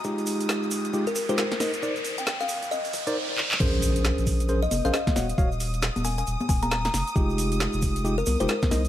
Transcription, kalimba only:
X:1
M:4/4
L:1/16
Q:"Swing 16ths" 1/4=135
K:Bbm
V:1 name="Kalimba"
z8 z B B c B2 z2 | z3 =g g f3 e z6 z | z8 z e e f e2 z2 | z6 a a z2 a b b b z2 |
z8 z B B c B2 z2 |]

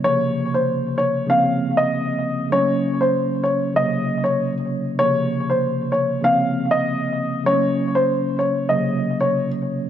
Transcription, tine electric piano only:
X:1
M:4/4
L:1/8
Q:"Swing 16ths" 1/4=97
K:Bbm
V:1 name="Tine electric piano" clef=bass
[C,D,F,B,]3 z [D,F,B,C]3 z | [D,G,=A,B,D]3 z [C,D,G,B,]3 z | [C,D,F,B,]3 z [D,F,B,C]3 z | [D,G,=A,B,D]3 z [C,D,G,B,]3 z |]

